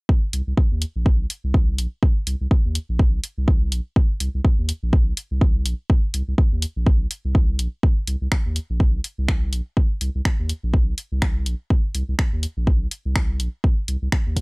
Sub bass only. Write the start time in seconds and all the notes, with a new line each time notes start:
0.33 C2
0.47 C2
0.72 D#2
0.96 A#1
1.20 C2
1.44 C2
1.78 A#1
2.27 C2
2.41 C2
2.65 D#2
2.89 A#1
3.13 C2
3.38 C2
3.72 A#1
4.20 C2
4.34 C2
4.59 D#2
4.83 A#1
5.07 C2
5.31 C2
5.66 A#1
6.14 C2
6.28 C2
6.52 D#2
6.76 A#1
7.01 C2
7.25 C2
7.59 A#1
8.07 C2
8.22 C2
8.46 D#2
8.70 A#1
8.94 C2
9.18 C2
9.53 A#1
10.01 C2
10.15 C2
10.39 D#2
10.63 A#1
10.88 C2
11.12 C2
11.46 A#1
11.95 C2
12.09 C2
12.33 D#2
12.57 A#1
12.81 C2
13.05 C2
13.40 A#1
13.88 C2
14.02 C2
14.26 D#2